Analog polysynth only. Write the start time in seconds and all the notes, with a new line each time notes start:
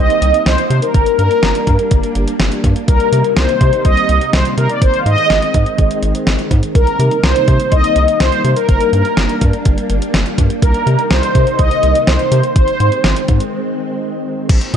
Already playing: D#5
0.46 C5
0.70 C5
0.82 A#4
0.94 A#4
1.18 A#4
2.88 A#4
3.37 C5
3.85 D#5
4.34 C5
4.58 A#4
4.70 D5
4.82 C5
4.99 F5
5.06 D#5
6.75 A#4
7.23 C5
7.72 D#5
8.20 C5
8.44 C5
8.56 A#4
8.69 A#4
8.93 A#4
10.62 A#4
11.10 C5
11.59 D#5
12.07 C5
12.56 C5